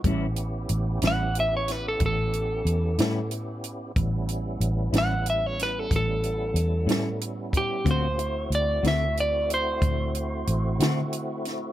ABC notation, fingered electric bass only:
X:1
M:12/8
L:1/8
Q:3/8=61
K:Amix
V:1 name="Fingered electric bass" clef=bass
A,,,2 A,,, A,,,3 A,,,2 E,, A,,3 | A,,,2 A,,, A,,,3 A,,,2 E,, A,,3 | D,,2 D,, D,,3 D,,2 A,,, D,3 |]